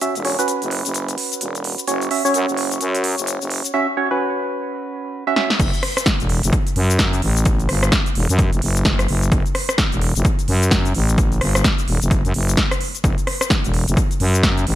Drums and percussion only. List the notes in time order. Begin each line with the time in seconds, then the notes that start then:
0.01 closed hi-hat, shaker
0.15 closed hi-hat, shaker
0.25 open hi-hat
0.39 closed hi-hat, shaker
0.48 closed hi-hat, shaker
0.62 closed hi-hat, shaker
0.71 open hi-hat
0.85 closed hi-hat, shaker
0.94 closed hi-hat, shaker
1.08 closed hi-hat, shaker
1.18 open hi-hat
1.32 closed hi-hat, shaker
1.41 closed hi-hat, shaker
1.55 closed hi-hat, shaker
1.64 open hi-hat
1.78 closed hi-hat, shaker
1.88 closed hi-hat, shaker
2.01 closed hi-hat, shaker
2.11 open hi-hat
2.25 shaker
2.34 closed hi-hat, shaker
2.49 shaker
2.57 open hi-hat
2.71 closed hi-hat, shaker
2.81 closed hi-hat, shaker
2.95 closed hi-hat, shaker
3.04 open hi-hat
3.18 closed hi-hat, shaker
3.27 closed hi-hat, shaker
3.42 shaker
3.50 open hi-hat
3.64 closed hi-hat, shaker
5.36 snare
5.50 snare
5.60 kick, closed hi-hat, crash, shaker
5.74 closed hi-hat, shaker
5.83 cross-stick, open hi-hat
5.97 cross-stick, closed hi-hat, shaker
6.06 kick, snare, closed hi-hat, shaker
6.20 closed hi-hat, shaker
6.29 open hi-hat
6.43 closed hi-hat, shaker
6.53 kick, closed hi-hat, shaker
6.67 closed hi-hat, shaker
6.76 open hi-hat
6.90 closed hi-hat, shaker
6.99 kick, snare, closed hi-hat, shaker
7.13 closed hi-hat, shaker
7.22 open hi-hat
7.36 closed hi-hat, shaker
7.45 kick, closed hi-hat, shaker
7.59 closed hi-hat, shaker
7.69 cross-stick, open hi-hat
7.83 cross-stick, shaker
7.92 kick, snare, closed hi-hat, shaker
8.06 closed hi-hat, shaker
8.15 open hi-hat
8.29 closed hi-hat, shaker
8.39 kick, closed hi-hat, shaker
8.53 closed hi-hat, shaker
8.62 open hi-hat
8.76 closed hi-hat, shaker
8.85 kick, snare, closed hi-hat, shaker
8.99 cross-stick, closed hi-hat, shaker
9.08 open hi-hat
9.22 closed hi-hat, shaker
9.32 kick, closed hi-hat, shaker
9.46 closed hi-hat, shaker
9.55 cross-stick, open hi-hat
9.69 cross-stick, closed hi-hat, shaker
9.78 kick, snare, closed hi-hat, shaker
9.92 closed hi-hat, shaker
10.01 open hi-hat
10.15 closed hi-hat, shaker
10.25 kick, closed hi-hat, shaker
10.39 closed hi-hat, shaker
10.48 open hi-hat
10.62 closed hi-hat, shaker
10.71 kick, snare, closed hi-hat, shaker
10.85 closed hi-hat, shaker
10.95 open hi-hat
11.09 closed hi-hat, shaker
11.18 kick, closed hi-hat, shaker
11.32 closed hi-hat, shaker
11.41 cross-stick, open hi-hat
11.55 cross-stick, shaker
11.64 kick, snare, closed hi-hat, shaker
11.78 closed hi-hat, shaker
11.88 open hi-hat
12.02 closed hi-hat, shaker
12.11 kick, closed hi-hat, shaker
12.25 closed hi-hat, shaker
12.34 open hi-hat
12.48 closed hi-hat, shaker
12.57 kick, snare, closed hi-hat, shaker
12.71 cross-stick, closed hi-hat, shaker
12.81 open hi-hat
12.95 closed hi-hat, shaker
13.04 kick, closed hi-hat, shaker
13.18 closed hi-hat, shaker
13.27 cross-stick, open hi-hat
13.41 cross-stick, closed hi-hat, shaker
13.50 kick, snare, closed hi-hat, shaker
13.64 closed hi-hat, shaker
13.74 open hi-hat
13.88 closed hi-hat, shaker
13.97 kick, closed hi-hat, shaker
14.11 closed hi-hat, shaker
14.20 open hi-hat
14.34 closed hi-hat, shaker
14.43 kick, snare, closed hi-hat, shaker
14.57 closed hi-hat, shaker
14.67 open hi-hat